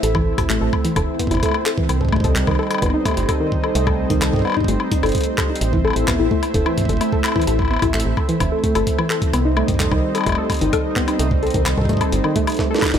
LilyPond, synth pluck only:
\new Staff \with { instrumentName = "Synth pluck" } { \time 4/4 \key c \major \tempo 4 = 129 a'16 e16 r16 a'16 a16 a'16 r16 e16 a'16 r16 b16 e'16 a16 r16 a'16 e16 | r16 a'16 a16 a'16 r16 ees16 a'16 r16 b16 ees'16 a16 r16 a'16 ees16 r16 a'16 | a16 a'16 r16 ees16 a'16 r16 b16 ees'16 a16 r16 ees'16 a'16 r16 a16 a'16 ees'16 | r16 e16 a'16 r16 b16 e'16 a16 r16 a'16 e16 r16 a'16 a16 a'16 r16 e16 |
a'16 r16 b16 e'16 a16 r16 a'16 e16 r16 a'16 a16 a'16 r16 e16 a'16 r16 | b16 ees'16 a16 r16 a'16 ees16 r16 a'16 a16 a'16 r16 ees16 a'16 r16 b16 ees'16 | a16 r16 a'16 ees16 r16 a'16 a16 a'16 r16 ees16 a16 a16 a16 a'16 ees'16 ees'16 | }